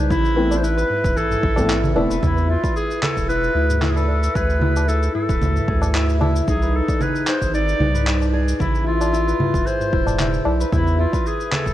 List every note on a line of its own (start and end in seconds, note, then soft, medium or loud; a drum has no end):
0.00 0.12 C2 medium
0.00 0.16 D#4 medium
0.00 1.16 G#4 medium
0.00 0.77 B4 medium
0.10 0.84 A1 medium
0.10 0.59 E4 loud
0.10 0.37 E4 medium
0.10 kick loud
0.10 low conga medium
0.10 shaker medium
0.25 shaker soft
0.36 0.53 A3 medium
0.36 0.53 B3 medium
0.36 0.53 C4 medium
0.36 0.63 E4 medium
0.36 0.54 E4 medium
0.51 tabla na medium
0.51 tabla tin medium
0.51 shaker medium
0.57 0.66 C5 medium
0.63 1.43 E4 medium
0.63 1.18 B4 loud
0.63 shaker medium
0.77 2.10 B4 medium
0.77 shaker soft
0.90 tabla ge medium
1.04 1.13 E1 loud
1.04 kick loud
1.04 shaker medium
1.16 1.36 A1 medium
1.16 3.02 G#4 medium
1.16 1.96 A4 loud
1.16 shaker medium
1.31 tabla ge medium
1.31 shaker soft
1.43 1.96 A1 medium
1.43 1.69 E4 medium
1.43 kick loud
1.56 1.72 A3 medium
1.56 1.72 B3 medium
1.56 1.72 C4 medium
1.56 1.73 A4 loud
1.56 kick medium
1.56 tabla na medium
1.56 tabla tin medium
1.56 tabla ge medium
1.56 shaker medium
1.69 1.95 E4 medium
1.69 clap medium
1.69 shaker medium
1.84 tabla na soft
1.84 low conga medium
1.84 shaker soft
1.95 2.06 E1 loud
1.95 2.12 A3 medium
1.95 2.12 B3 medium
1.95 2.13 C4 medium
1.95 2.22 E4 medium
1.95 2.13 E4 medium
1.95 tabla na medium
1.95 tabla tin medium
2.10 2.19 E1 medium
2.10 2.63 B4 medium
2.10 shaker medium
2.22 2.56 E2 loud
2.22 2.49 E4 medium
2.22 2.48 E4 medium
2.22 kick loud
2.22 low conga medium
2.22 shaker medium
2.37 shaker soft
2.49 3.29 E4 medium
2.49 2.75 F4 medium
2.64 3.96 B4 medium
2.64 kick loud
2.64 tabla tin medium
2.64 shaker medium
2.76 3.01 G#4 medium
2.76 shaker soft
2.91 shaker soft
3.02 4.35 G#4 medium
3.02 3.27 A4 medium
3.02 clap medium
3.02 low conga medium
3.17 3.50 E1 loud
3.17 kick medium
3.17 shaker medium
3.29 3.55 E4 medium
3.29 3.83 B4 loud
3.29 shaker soft
3.44 shaker soft
3.55 4.29 D2 medium
3.55 3.82 E4 medium
3.70 tabla ge medium
3.70 shaker medium
3.81 4.61 E4 medium
3.81 3.92 A4 medium
3.81 clap medium
3.81 low conga medium
3.81 shaker medium
3.90 3.98 G#4 medium
3.96 4.36 A4 medium
3.96 5.28 B4 medium
3.96 tabla na soft
3.96 shaker soft
4.08 tabla tin medium
4.23 shaker medium
4.35 5.09 D2 medium
4.35 5.67 G#4 medium
4.35 4.90 B4 loud
4.35 kick loud
4.35 shaker medium
4.50 shaker soft
4.61 4.88 E4 medium
4.61 low conga medium
4.76 tabla na medium
4.76 tabla tin medium
4.76 shaker medium
4.88 5.14 E4 medium
4.88 5.14 A4 medium
4.88 shaker medium
5.03 shaker soft
5.15 5.94 E4 medium
5.15 6.17 A4 medium
5.15 tabla ge medium
5.29 5.38 D1 medium
5.29 6.61 B4 medium
5.29 kick loud
5.29 shaker medium
5.42 5.60 D2 medium
5.42 low conga medium
5.42 shaker medium
5.56 tabla ge medium
5.56 shaker soft
5.68 6.42 D2 medium
5.68 7.00 G#4 medium
5.68 kick loud
5.82 tabla na medium
5.82 tabla tin medium
5.82 tabla ge medium
5.82 shaker medium
5.94 6.20 E4 medium
5.94 clap medium
5.94 shaker medium
6.09 shaker soft
6.21 6.54 E4 medium
6.21 tabla na medium
6.21 tabla tin medium
6.21 low conga medium
6.36 shaker medium
6.47 6.81 C2 loud
6.47 7.27 D#4 medium
6.47 6.77 G#4 medium
6.47 kick loud
6.47 shaker medium
6.62 7.94 B4 medium
6.62 shaker soft
6.76 7.03 A4 medium
6.88 kick loud
6.88 tabla tin medium
6.88 shaker medium
7.00 8.33 G#4 medium
7.00 7.30 B4 medium
7.00 low conga medium
7.00 shaker medium
7.15 shaker soft
7.27 7.53 D#4 medium
7.27 7.54 C5 medium
7.27 clap medium
7.42 7.74 G#1 medium
7.42 kick medium
7.42 shaker medium
7.54 7.80 D#4 medium
7.54 8.30 D5 loud
7.54 shaker medium
7.68 shaker soft
7.80 8.54 C2 medium
7.80 8.65 D#4 medium
7.80 low conga medium
7.94 9.27 B4 medium
7.94 tabla ge loud
7.94 shaker medium
8.07 clap medium
8.07 shaker medium
8.22 tabla na soft
8.22 shaker soft
8.33 9.66 G#4 medium
8.33 tabla tin medium
8.48 shaker medium
8.59 9.34 A1 medium
8.59 8.86 E4 medium
8.59 8.85 E4 medium
8.59 kick loud
8.59 low conga medium
8.59 shaker medium
8.75 shaker soft
8.86 9.12 E4 medium
8.86 9.68 F4 loud
9.01 tabla na medium
9.01 tabla tin medium
9.01 shaker medium
9.13 9.92 E4 medium
9.13 shaker medium
9.27 10.60 B4 medium
9.27 shaker soft
9.39 tabla ge medium
9.39 low conga medium
9.54 9.62 E1 medium
9.54 kick loud
9.54 shaker medium
9.66 11.52 G#4 medium
9.66 10.46 C5 loud
9.66 shaker medium
9.80 tabla ge medium
9.80 shaker soft
9.93 10.40 E1 loud
9.93 10.19 E4 medium
9.93 kick loud
10.06 tabla na medium
10.06 tabla tin medium
10.06 tabla ge medium
10.06 shaker medium
10.19 10.45 E4 medium
10.19 clap medium
10.19 low conga medium
10.19 shaker medium
10.34 shaker soft
10.45 10.65 B1 medium
10.45 10.72 E4 medium
10.45 tabla na medium
10.45 tabla tin medium
10.60 11.13 B4 medium
10.60 shaker medium
10.72 11.06 E2 loud
10.72 10.98 E4 medium
10.72 kick loud
10.72 low conga medium
10.72 shaker medium
10.87 shaker soft
10.99 11.74 E4 medium
10.99 11.29 F4 medium
11.12 11.74 B4 medium
11.12 kick loud
11.12 tabla tin medium
11.12 shaker medium
11.26 11.53 G#4 medium
11.26 shaker soft
11.40 shaker soft
11.52 11.74 G#4 medium
11.52 11.74 A4 medium
11.52 clap medium
11.52 low conga medium
11.66 11.74 E1 medium
11.66 kick medium
11.66 shaker medium